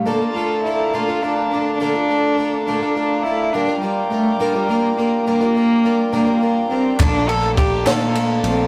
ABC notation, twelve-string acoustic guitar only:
X:1
M:6/8
L:1/16
Q:3/8=69
K:Bblyd
V:1 name="Twelve-string acoustic guitar"
[B,,D,A,DFA] [A,DFA] [A,DFA]2 [A,DFA]2 [B,,D,A,DFA] [A,DFA] [A,DFA]2 [A,DFA]2 | [B,,D,A,DFA] [A,DFA] [A,DFA]2 [A,DFA]2 [B,,D,A,DFA] [A,DFA] [A,DFA]2 [A,DFA]2 | [B,,D,G,DFB] [G,DFB] [G,DFB]2 [G,DFB]2 [B,,D,G,DFB] [G,DFB] [G,DFB]2 [G,DFB]2 | [B,,D,G,DFB] [G,DFB] [G,DFB]2 [G,DFB]2 [B,,D,G,DFB] [G,DFB] [G,DFB]2 [G,DFB]2 |
[B,,D,A,DFA] [A,DFA] [A,DFA]2 [A,DFA]2 [B,,D,A,DFA] [A,DFA] [A,DFA]2 [A,DFA]2 |]